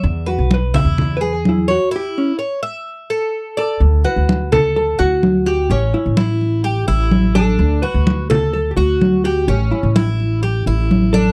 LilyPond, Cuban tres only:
\new Staff \with { instrumentName = "Cuban tres" } { \time 4/4 \key d \major \tempo 4 = 127 e''8 b'4 e'4 gis'4 cis''8 | e'4 cis''8 e''4 a'4 d''8 | r8 fis'4 a'4 fis'4 g'8 | cis'4 e'4 g'8 e'4 d'8~ |
d'8 fis'4 a'4 fis'4 g'8 | cis'4 e'4 g'8 e'4 d'8 | }